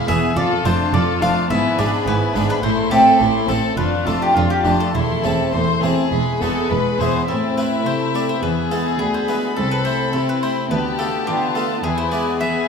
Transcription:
0.07 double bass section E1, harpsichord E2 B3 E4 G#4, cello section E2, viola section B3, violin section G#4 G#5, mandolin E5
0.36 double bass section F1, harpsichord F2, cello section F2, viola section F4, violin section A4 F5, mandolin D5
0.65 double bass section F1, harpsichord F2 A3 D4 A4, cello section F2, viola section D4, violin section F4 A5, mandolin C5
0.94 double bass section F1, harpsichord F2, cello section F2, viola section F4, violin section A4 F5, mandolin D5
1.22 double bass section F1, harpsichord F2 A3 D4 A4, cello section F2, viola section D4, violin section F4 A5, mandolin F5
1.50 double bass section G#1, cello section G#2, harpsichord G#2, viola section B3, violin section E4 G#5, mandolin E5
1.79 double bass section G#1, cello section G#2, harpsichord G#2 B3 D4 E4, viola section D4, violin section G#4 B5, mandolin D5
2.07 double bass section G#1, harpsichord G#2, cello section G#2, viola section B3, violin section E4 G#5, mandolin B4
2.35 double bass section G#1, cello section G#2, harpsichord G#2 B3 D4 E4, viola section D4, violin section G#4 B5
2.50 mandolin B4
2.63 double bass section A1, harpsichord A2, cello section A2, viola section A3, violin section E4 C6, mandolin C5
2.91 double bass section A1, harpsichord A2 A3 C4 E4, cello section A2, viola section C4, mandolin G4, violin section A4 A5
3.20 double bass section A1, cello section A2, harpsichord A2, viola section A3, violin section E4 C6
3.48 double bass section A1, cello section A2, harpsichord A2 A3 C4 E4, viola section C4, mandolin A4, violin section A4 A5
3.77 double bass section F1, cello section F2, harpsichord F2, violin section D4 F5, viola section F4, mandolin B4
4.06 double bass section F1, cello section F2, harpsichord F2 A3 D4, viola section D4, violin section F4 A5, mandolin A4
4.22 mandolin G4
4.35 double bass section F1, harpsichord F2, cello section F2, violin section D4 F5, viola section F4, mandolin F4
4.50 mandolin G4
4.65 double bass section F1, harpsichord F2 A3 D4, cello section F2, viola section D4, violin section F4 A5
4.80 mandolin A4
4.94 double bass section E1, harpsichord E2, cello section E2, viola section A3, mandolin E4, violin section E4 C6
5.24 double bass section E1, harpsichord E2 A3 C4 E4, cello section E2, viola section C4, violin section A4 A5
5.53 double bass section E1, harpsichord E2, cello section E2, viola section A3, violin section C5 C6
5.82 double bass section E1, cello section E2, harpsichord E2 A3 C4 E4, viola section C4, violin section G#4 A5
6.12 double bass section E1, cello section E2, harpsichord E2, viola section G#3, violin section B5
6.41 double bass section E1, cello section E2, harpsichord E2 G#3 B3 E4, viola section B3, violin section A4 G#5
6.70 double bass section E1, cello section E2, harpsichord E2, viola section G#3, violin section B4 B5
6.99 double bass section E1, cello section E2, harpsichord E2 G#3 B3 E4, viola section B3, violin section C5 G#5
7.28 cello section A2, harpsichord A2, viola section C4, violin section E4 E5, mandolin A4
7.58 harpsichord A3 C4 E4, mandolin B4
7.85 cello section C3, harpsichord C3, viola section A3, mandolin C5
8.14 harpsichord A3 C4 E4, mandolin D5
8.29 mandolin C5
8.42 cello section E2, harpsichord E2, viola section B3, violin section G#4, mandolin B4
8.71 harpsichord G#3 B3 E4, mandolin A4
8.99 cello section D2, harpsichord D2, mandolin G#4, violin section B5
9.14 mandolin C5
9.28 harpsichord G#3 B3 E4, mandolin B4
9.57 cello section C2, harpsichord C2, viola section C4, mandolin A4, violin section A4
9.71 mandolin B4
9.85 harpsichord A3 E4, mandolin C5
10.13 cello section C3, harpsichord C3, viola section C4, violin section E4, mandolin A4
10.29 mandolin B4
10.43 harpsichord A3 E4, mandolin C5
10.71 cello section D2, harpsichord D2, viola section B3, violin section G4 A5, mandolin B4
10.99 harpsichord A3 B3 F4, mandolin A4
11.27 harpsichord D3, cello section D3, viola section B3, violin section F4, mandolin G4
11.55 harpsichord A3 B3 F4, mandolin A4
11.84 harpsichord E2, cello section E2, viola section B3, violin section E4 G#5, mandolin G#4
11.98 mandolin C5
12.12 harpsichord G#3 B3 E4, mandolin D5
12.40 harpsichord E3, cello section E3, violin section G#4 G#5, mandolin E5

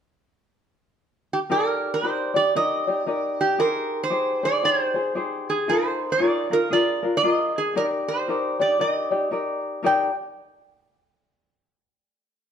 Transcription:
1.33 resonator guitar played with a steel bar G4
1.50 ukulele D#4 G4 A#4 D5, resonator guitar played with a steel bar A#4
1.94 resonator guitar played with a steel bar C5
2.03 ukulele D#4 G4 A#4 D5
2.34 ukulele D#4 G4 D5, resonator guitar played with a steel bar D5
2.55 ukulele D#4 G4 A#4 D5, resonator guitar played with a steel bar D#5
2.87 ukulele D#4 G4 D5
3.06 ukulele D#4 G4 A#4 D5
3.41 resonator guitar played with a steel bar G4
3.59 ukulele D#4 G4 G#4 C5, resonator guitar played with a steel bar A#4
4.04 resonator guitar played with a steel bar C5
4.10 ukulele D#4 G4 G#4 C5
4.43 ukulele D#4 G#4 C5, resonator guitar played with a steel bar D5
4.64 ukulele D#4 G4 G#4 C5, resonator guitar played with a steel bar C#5
4.82 resonator guitar played with a steel bar C5
4.94 ukulele D#4 G#4 C5
5.15 ukulele D#4 G4 G#4 C5
5.50 resonator guitar played with a steel bar G#4
5.68 ukulele D#4 F4 G#4 A#4, resonator guitar played with a steel bar C5
6.12 resonator guitar played with a steel bar D5
6.19 ukulele D#4 F4 G#4 A#4
6.50 ukulele D#4 F4 A#4, resonator guitar played with a steel bar A#4
6.71 ukulele D4 F4 G#4 A#4, resonator guitar played with a steel bar D5
7.03 ukulele D4 F4 A#4
7.17 resonator guitar played with a steel bar D5
7.23 ukulele D4 F4 G#4 A#4
7.28 resonator guitar played with a steel bar D#5
7.58 resonator guitar played with a steel bar G#4
7.75 ukulele D#4 G4 A#4 D5, resonator guitar played with a steel bar A#4
8.08 resonator guitar played with a steel bar C5
8.28 ukulele D#4 G4 A#4 D5
8.60 ukulele D#4 G4 D5, resonator guitar played with a steel bar D5
8.79 ukulele D#4 G4 A#4 D5, resonator guitar played with a steel bar D#5
9.11 ukulele D#4 G4 D5
9.31 ukulele D#4 G4 A#4 D5
9.83 ukulele D#4 G4 A#4 D5, resonator guitar played with a steel bar G5

